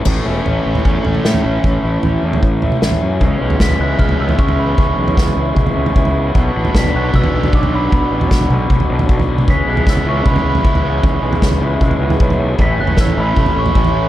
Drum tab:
CC |x---------------|----------------|----------------|----------------|
SD |------------o---|------------o---|----o-----------|----o-----------|
T2 |-----------o----|-----------o----|--------o-------|--------o-------|
FT |o---o--o--o--o--|o---o--o--o--o--|o--o-o---o-o-o--|o--o-o---o-o-o--|
BD |o-------o-------|o-------o-------|o---o---o---o---|o---o---o---o---|

CC |----------------|----------------|----------------|----------------|
SD |----o-----------|----o-----------|----o-----------|----o-----------|
T2 |--------o-------|------o-o------o|--------o-------|--------o-------|
FT |o--o-o---o-o-o--|o--o-o---o-o-o--|o--o-o---o-o-o--|o--o-o---o-o-o--|
BD |o---o---o---o---|o---o---o---o---|o---o---o---o---|o---o---o---o---|

CC |----------------|
SD |----o-----------|
T2 |--------o-------|
FT |o--o-o---o-o-o--|
BD |o---o---o---o---|